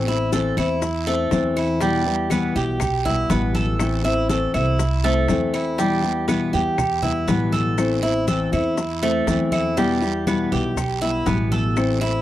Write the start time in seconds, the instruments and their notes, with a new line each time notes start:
Already playing: upright bass A1
0.07 nylon-string guitar A3 C4 E4, cuban tres E4, high conga, maracas
0.32 nylon-string guitar E3 A3 C4 E4, cuban tres A4, high bongo, high conga, short guiro, maracas
0.57 upright bass E2, nylon-string guitar A3 C4 E4, cuban tres E4, high bongo, high conga, short guiro, claves, maracas
0.82 muted nylon-string guitar stroke, high bongo, high conga, long guiro, maracas
1.07 cuban tres A3, nylon-string guitar A3 C4 E4, high bongo, high conga, maracas
1.31 upright bass E2, nylon-string guitar E3 A3 C4 E4, high bongo, low bongo, high conga, short guiro, maracas
1.56 cuban tres E4, high bongo, short guiro, claves, maracas
1.81 nylon-string guitar B2 E3 G3 B3 E4, cuban tres G3, high bongo, high conga, long guiro, maracas
2.06 nylon-string guitar G3 B3 E4, high conga, maracas
2.30 nylon-string guitar B2 E3 G3 B3 E4, cuban tres B3, high bongo, high conga, short guiro, claves, maracas
2.56 upright bass B1, nylon-string guitar G3 B3 E4, cuban tres G4, short guiro, maracas
2.80 muted nylon-string guitar stroke, high bongo, high conga, low conga, long guiro, claves, maracas
3.05 nylon-string guitar G3 B3 E4, cuban tres E4, high conga, low conga, maracas
3.30 upright bass A1, nylon-string guitar B2 E3 G3 B3 E4, cuban tres B3, high bongo, low bongo, high conga, short guiro, maracas
3.55 cuban tres A4, high conga, short guiro, maracas
3.79 nylon-string guitar E3 A3 C4 E4, high bongo, long guiro, claves, maracas
4.04 nylon-string guitar A3 C4 E4, cuban tres E4, high conga, maracas
4.29 nylon-string guitar E3 A3 C4 E4, cuban tres A4, high bongo, high conga, short guiro, maracas
4.54 upright bass C2, nylon-string guitar A3 C4 E4, cuban tres E4, high bongo, high conga, short guiro, claves, maracas
4.79 muted nylon-string guitar stroke, high bongo, high conga, long guiro, maracas
5.04 cuban tres A3, nylon-string guitar A3 C4 E4, high bongo, high conga, maracas
5.28 upright bass E2, nylon-string guitar E3 A3 C4 E4, high bongo, low bongo, high conga, short guiro, maracas
5.54 cuban tres E4, high bongo, short guiro, claves, maracas
5.78 nylon-string guitar B2 E3 G3 B3 E4, cuban tres G3, high bongo, high conga, long guiro, maracas
6.03 nylon-string guitar G3 B3 E4, high conga, maracas
6.28 nylon-string guitar B2 E3 G3 B3 E4, cuban tres B3, high bongo, high conga, short guiro, claves, maracas
6.53 upright bass E2, nylon-string guitar G3 B3 E4, cuban tres G4, high conga, short guiro, maracas
6.78 muted nylon-string guitar stroke, high bongo, high conga, low conga, long guiro, claves, maracas
7.02 nylon-string guitar G3 B3 E4, cuban tres E4, high conga, low conga, maracas
7.28 upright bass A1, nylon-string guitar B2 E3 G3 B3 E4, cuban tres B3, high bongo, low bongo, high conga, short guiro, maracas
7.52 cuban tres A4, high conga, short guiro, maracas
7.78 nylon-string guitar E3 A3 C4 E4, high bongo, long guiro, claves, maracas
8.02 nylon-string guitar A3 C4 E4, cuban tres E4, high conga, maracas
8.27 nylon-string guitar E3 A3 C4 E4, cuban tres A4, high bongo, high conga, short guiro, maracas
8.52 upright bass E2, nylon-string guitar A3 C4 E4, cuban tres E4, high bongo, high conga, short guiro, claves, maracas
8.77 muted nylon-string guitar stroke, high bongo, high conga, long guiro, maracas
9.02 cuban tres A3, nylon-string guitar A3 C4 E4, high bongo, high conga, maracas
9.27 upright bass E2, nylon-string guitar E3 A3 C4 E4, high bongo, low bongo, high conga, short guiro, maracas
9.52 cuban tres E4, high bongo, high conga, short guiro, claves, maracas
9.77 nylon-string guitar B2 E3 G3 B3 E4, cuban tres G3, high bongo, high conga, long guiro, maracas
10.02 nylon-string guitar G3 B3 E4, high conga, maracas
10.27 nylon-string guitar B2 E3 G3 B3 E4, cuban tres B3, high bongo, high conga, short guiro, claves, maracas
10.52 upright bass B1, nylon-string guitar G3 B3 E4, cuban tres G4, high conga, short guiro, maracas
10.76 muted nylon-string guitar stroke, high bongo, high conga, low conga, long guiro, claves, maracas
11.01 nylon-string guitar G3 B3 E4, cuban tres E4, high conga, maracas
11.26 upright bass A1, nylon-string guitar B2 E3 G3 B3 E4, cuban tres B3, high bongo, low bongo, high conga, short guiro, maracas
11.51 cuban tres A4, high conga, short guiro, maracas
11.77 nylon-string guitar E3 A3 C4 E4, high bongo, long guiro, claves, maracas
12.01 nylon-string guitar A3 C4 E4, cuban tres E4, high conga, maracas